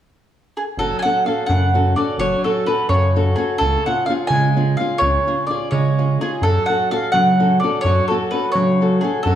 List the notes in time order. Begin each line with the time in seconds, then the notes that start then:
0.57 G#4
0.78 F#1 F#3 A4
0.99 F#5 G#5
1.05 C#4 F#4 A4
1.26 C#4 F#4 A4 F5
1.46 F#2 C#3 F#5
1.74 C#4 F#4 A4
1.96 C#4 F#4 A4 D5
2.18 F#1 F#3 C#5
2.44 C#4 F#4 A4
2.66 C#4 F#4 A4 B4
2.89 F#2 C#3 C#5
3.16 C#4 F#4 A4
3.36 C#4 F#4 G#4 A4
3.58 C#2 C#3 A4
3.86 C#4 F4 G#4 F#5
4.06 C#4 F5
4.10 F4 G#4
4.27 C#3 G#5
4.32 G#3
4.56 C#4 F4 G#4
4.77 C#4 F4 F5
4.81 G#4
4.98 C#2 C#3 C#5
5.27 C#4 F4 G#4
5.47 C#4 F4 D5
5.51 G#4
5.71 C#3 G#3 C#5
5.98 C#4 F4 G#4
6.21 C#4 F4 G#4
6.42 F#2 F#3 A4
6.66 C#4 F#4 A4 F#5
6.91 C#4 F#4 A4 F5
7.12 C#3 F#3 F#5
7.40 C#4 F#4 A4
7.60 C#4 D5
7.64 F#4 A4
7.81 F#2 C#5
7.86 F#3
8.08 C#4 F#4 A4
8.31 C#4 F#4 A4 B4
8.52 F#3 C#5
8.56 C#3
8.81 C#4 F#4 A4
9.01 C#4 F#4 G#4 A4
9.23 F#2 A4
9.27 F#3